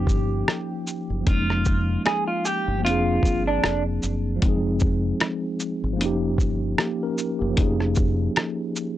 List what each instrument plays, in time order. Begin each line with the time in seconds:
Already playing: tine electric piano F3 A#3 C#4 D#4 G4, clean electric guitar G4
0.07 fingered electric bass G1, kick, shaker
0.48 cross-stick, closed hi-hat
0.87 shaker
1.10 fingered electric bass F#1
1.20 tine electric piano F3 A#3
1.27 fingered electric bass F1, tine electric piano C#4 D#4, clean electric guitar F4, kick, closed hi-hat
1.33 tine electric piano G#3
1.50 cross-stick
1.65 kick, shaker
2.06 clean electric guitar G#4, cross-stick, closed hi-hat
2.28 clean electric guitar F4
2.45 clean electric guitar G4, shaker
2.68 fingered electric bass G1
2.78 tine electric piano F3 A#3
2.84 fingered electric bass F1, tine electric piano C4 D4, clean electric guitar F4, closed hi-hat
2.91 tine electric piano G#4
3.23 fingered electric bass G1, kick, shaker
3.47 clean electric guitar D4
3.64 fingered electric bass F1, cross-stick, closed hi-hat
4.03 fingered electric bass F#1, shaker
4.36 tine electric piano F3 G#3
4.42 fingered electric bass F1, tine electric piano C4 D#4, kick, closed hi-hat
4.48 tine electric piano G#4
4.80 kick, shaker
5.20 cross-stick, closed hi-hat
5.60 shaker
5.84 fingered electric bass G#1
5.93 tine electric piano F3 A#3
5.99 fingered electric bass F1, tine electric piano C#4 D#4, closed hi-hat
6.05 tine electric piano G4
6.38 fingered electric bass G1, kick, shaker
6.78 tine electric piano A#3 G4, cross-stick, closed hi-hat
7.03 tine electric piano C#4 A#4
7.18 shaker
7.39 fingered electric bass F#1, tine electric piano A#3 G4
7.50 tine electric piano F3 A#3
7.56 fingered electric bass F1, tine electric piano C#4 D#4, kick, closed hi-hat
7.62 tine electric piano G#4
7.80 cross-stick
7.95 kick, shaker
8.36 cross-stick, closed hi-hat
8.76 shaker